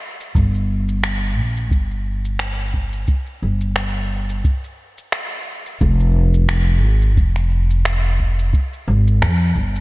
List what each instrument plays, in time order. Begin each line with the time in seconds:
0.21 shaker
0.35 upright bass G1, kick, shaker
0.55 shaker
0.89 shaker
1.04 finger snap, shaker
1.23 shaker
1.38 upright bass A#1
1.57 shaker
1.71 upright bass G1, kick, shaker
1.91 shaker
2.25 shaker
2.39 finger snap, shaker
2.59 shaker
2.74 kick
2.93 shaker
3.07 kick, shaker
3.26 shaker
3.42 upright bass G1
3.61 shaker
3.76 finger snap, shaker
3.95 shaker
4.29 shaker
4.44 kick, shaker
4.64 shaker
4.98 shaker
5.12 finger snap, shaker
5.32 shaker
5.66 shaker
5.81 upright bass F1, kick, shaker
6.00 shaker
6.34 shaker
6.49 finger snap, shaker
6.68 shaker
6.83 upright bass G#1
7.02 shaker
7.17 upright bass F1, kick, shaker
7.36 finger snap, shaker
7.70 shaker
7.85 finger snap, shaker
8.05 shaker
8.19 kick
8.39 shaker
8.53 kick, shaker
8.73 shaker
8.88 upright bass G#1
9.07 shaker
9.22 upright bass F2, finger snap, shaker
9.42 shaker
9.56 upright bass G1, kick
9.76 shaker